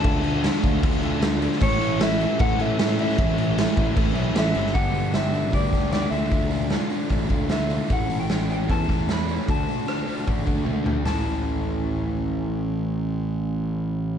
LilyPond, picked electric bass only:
\new Staff \with { instrumentName = "Picked electric bass" } { \clef bass \time 4/4 \key a \mixolydian \tempo 4 = 152 d,4. d,8 d,2 | a,,2 a,2 | a,,4. a,,8 a,,8 b,,8 a,,8 g,,8 | g,,2 d,8 d,4 d,8~ |
d,4. r8 a,,8 d,4. | a,,2 e,8 e,4. | d,8 r4. a,,8 d,4. | a,,1~ |
a,,1 | }